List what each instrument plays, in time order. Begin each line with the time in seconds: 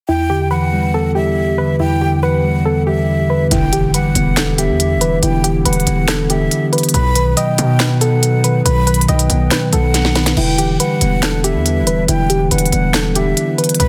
0.08 tine electric piano E2, analog synth pad D3 B3 E4 G4, synth pluck E4, flute G5
0.30 tine electric piano D3, synth pluck G4
0.51 tine electric piano E3, synth pluck B4, flute F#5
0.73 tine electric piano G3
0.94 tine electric piano B3, synth pluck A4
1.15 tine electric piano G3, synth pluck G4, flute E5
1.58 tine electric piano D3, synth pluck B4
1.80 tine electric piano E2, synth pluck E4, flute G5
2.01 tine electric piano D3, synth pluck G4
2.23 tine electric piano E3, synth pluck B4, flute F#5
2.44 tine electric piano G3
2.65 tine electric piano B3, synth pluck A4
2.87 tine electric piano G3, synth pluck G4, flute E5
3.30 tine electric piano D3, synth pluck B4
3.51 808-style bass E1, analog synth pad D3 B3 E4 G4, tine electric piano D3, synth pluck E4, flute G5, closed hi-hat, impact
3.72 tine electric piano E3, synth pluck G4, closed hi-hat
3.94 tine electric piano G3, synth pluck B4, flute F#5, closed hi-hat
4.15 808-style bass E1, tine electric piano B3, closed hi-hat
4.37 synth pluck A4, snare, clap, closed hi-hat
4.58 tine electric piano B3, synth pluck G4, flute E5, closed hi-hat
4.69 808-style bass E2
4.80 closed hi-hat
4.96 808-style bass E1
5.01 tine electric piano E3, synth pluck B4, closed hi-hat
5.23 808-style bass E1, tine electric piano D3, synth pluck E4, flute G5, closed hi-hat
5.43 tine electric piano E3, synth pluck G4, closed hi-hat
5.65 808-style bass E1, tine electric piano G3, synth pluck B4, flute F#5, closed hi-hat
5.73 closed hi-hat
5.80 closed hi-hat
5.87 808-style bass E1, tine electric piano B3, closed hi-hat
6.08 tine electric piano D4, synth pluck A4, snare, clap, closed hi-hat
6.29 tine electric piano B3, synth pluck G4, flute E5, closed hi-hat
6.51 closed hi-hat
6.73 tine electric piano E3, synth pluck B4, closed hi-hat
6.78 closed hi-hat
6.83 closed hi-hat
6.89 closed hi-hat
6.94 808-style bass B1, tine electric piano B2, analog synth pad F#3 D#4 B4, synth pluck B4, flute B5, closed hi-hat
7.15 tine electric piano D#3, synth pluck B4, closed hi-hat
7.37 tine electric piano F#3, synth pluck D#5, flute G5, closed hi-hat
7.58 808-style bass B2, tine electric piano B3, closed hi-hat
7.80 synth pluck B4, tine electric piano B4, snare, clap, closed hi-hat
8.01 tine electric piano B3, synth pluck A4, flute F#5, closed hi-hat
8.23 closed hi-hat
8.44 tine electric piano D#3, synth pluck B4, closed hi-hat
8.65 808-style bass B1, tine electric piano B2, synth pluck B4, flute B5, closed hi-hat
8.87 tine electric piano D#3, synth pluck B4, closed hi-hat
8.94 closed hi-hat
9.01 closed hi-hat
9.08 808-style bass B1, tine electric piano F#3, synth pluck D#5, flute G5, closed hi-hat
9.19 closed hi-hat
9.30 808-style bass B1, tine electric piano B3, closed hi-hat
9.51 tine electric piano B4, synth pluck B4, snare, clap, closed hi-hat
9.73 808-style bass B1, tine electric piano B3, synth pluck A4, flute F#5, closed hi-hat
9.94 snare, closed hi-hat
10.05 snare
10.15 tine electric piano D#3, synth pluck B4, snare, closed hi-hat, open hi-hat
10.26 snare, closed hi-hat
10.37 808-style bass E1, tine electric piano D3, analog synth pad G3 D4 E4, synth pluck E4, flute G5, crash
10.58 tine electric piano E3, synth pluck G4, closed hi-hat
10.80 tine electric piano G3, synth pluck B4, flute F#5, closed hi-hat
11.01 808-style bass E1, tine electric piano B3, closed hi-hat
11.23 tine electric piano D4, synth pluck A4, snare, clap, closed hi-hat
11.44 tine electric piano B3, synth pluck G4, flute E5, closed hi-hat
11.55 808-style bass E2
11.66 closed hi-hat
11.82 808-style bass E1
11.87 tine electric piano E3, synth pluck B4, closed hi-hat
12.08 808-style bass E1, tine electric piano D3, synth pluck E4, flute G5, closed hi-hat
12.29 tine electric piano E3, synth pluck G4, closed hi-hat
12.51 808-style bass E1, tine electric piano G3, synth pluck B4, flute F#5, closed hi-hat
12.58 closed hi-hat
12.66 closed hi-hat
12.72 808-style bass E1, tine electric piano B3, closed hi-hat
12.94 synth pluck A4, snare, clap, closed hi-hat
13.15 tine electric piano B3, synth pluck G4, flute E5, closed hi-hat
13.37 closed hi-hat
13.58 tine electric piano E3, synth pluck B4, closed hi-hat
13.64 closed hi-hat
13.69 closed hi-hat
13.75 closed hi-hat
13.80 808-style bass B1, tine electric piano B2, analog synth pad F#3 B3 D#4 B4, synth pluck B4, flute B5, closed hi-hat